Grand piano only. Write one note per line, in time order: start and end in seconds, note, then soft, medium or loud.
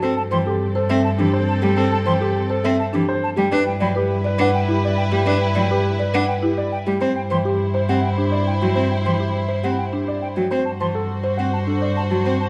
0.03 0.21 A4 medium
0.32 0.50 G5 medium
0.47 0.65 G4 medium
0.75 0.94 A4 medium
0.90 1.08 E5 medium
1.18 1.37 G4 medium
1.33 1.52 C5 medium
1.63 1.81 G5 medium
1.77 1.96 A4 loud
2.07 2.25 G5 medium
2.21 2.40 G4 medium
2.50 2.69 A4 medium
2.64 2.83 E5 medium
2.94 3.12 G4 medium
3.09 3.27 C5 medium
3.38 3.56 G5 medium
3.52 3.71 B4 loud
3.81 4.00 G5 medium
3.96 4.15 G4 medium
4.26 4.44 B4 medium
4.41 4.59 F#5 medium
4.70 4.88 G4 medium
4.85 5.02 D5 medium
5.14 5.31 G5 medium
5.28 5.46 B4 medium
5.57 5.75 G5 medium
5.71 5.89 G4 medium
6.00 6.19 B4 medium
6.15 6.33 F#5 medium
6.43 6.62 G4 medium
6.58 6.76 D5 medium
6.87 7.06 G5 medium
7.02 7.20 C5 medium
7.31 7.50 G5 medium
7.45 7.64 G4 medium
7.75 7.93 C5 medium
7.89 8.08 F#5 medium
8.18 8.37 G4 medium
8.32 8.51 D5 medium
8.61 8.80 G5 medium
8.75 8.95 C5 medium
9.05 9.24 G5 medium
9.19 9.38 G4 medium
9.49 9.68 C5 medium
9.64 9.82 F#5 medium
9.93 10.11 G4 medium
10.08 10.26 D5 medium
10.37 10.55 G5 medium
10.51 10.70 C5 medium
10.81 10.99 A5 medium
10.95 11.13 A4 medium
11.24 11.42 C5 medium
11.37 11.57 F#5 medium
11.67 11.86 A4 medium
11.82 12.01 D5 medium
12.10 12.30 A5 medium
12.26 12.44 C5 medium